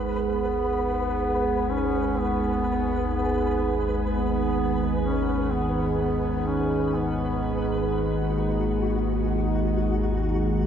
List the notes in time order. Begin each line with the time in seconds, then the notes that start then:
Already playing: G#1 D#2 G#3 D#4 G#4 B4
0.31 B3
1.71 C#4
2.20 B3
3.14 B3
4.08 B3
5.04 C#4
5.52 B3
6.00 B3
6.48 C#4
6.94 B3
7.90 F#4